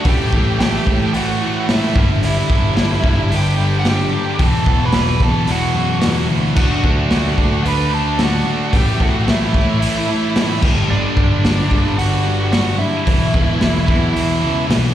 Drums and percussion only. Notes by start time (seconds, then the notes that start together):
0.04 kick, open hi-hat
0.33 kick
0.60 snare, open hi-hat
0.87 kick
1.14 open hi-hat
1.69 snare, open hi-hat
1.96 kick
2.23 open hi-hat
2.50 kick
2.77 snare, open hi-hat
3.04 kick
3.32 open hi-hat
3.85 snare, open hi-hat
4.39 kick, open hi-hat
4.66 kick
4.92 snare, open hi-hat
5.20 kick
5.47 open hi-hat
6.01 snare, open hi-hat
6.56 kick, crash
6.84 kick
7.11 snare, open hi-hat
7.38 kick
7.65 open hi-hat
8.19 snare, open hi-hat
8.73 kick, open hi-hat
9.00 kick
9.28 snare, open hi-hat
9.54 kick
9.82 open hi-hat
10.36 snare, open hi-hat
10.62 kick, crash
11.17 kick
11.44 snare, open hi-hat
11.71 kick
11.99 open hi-hat
12.52 snare, open hi-hat
13.07 kick, open hi-hat
13.34 kick
13.61 snare, open hi-hat
13.88 kick
14.16 open hi-hat
14.70 snare, open hi-hat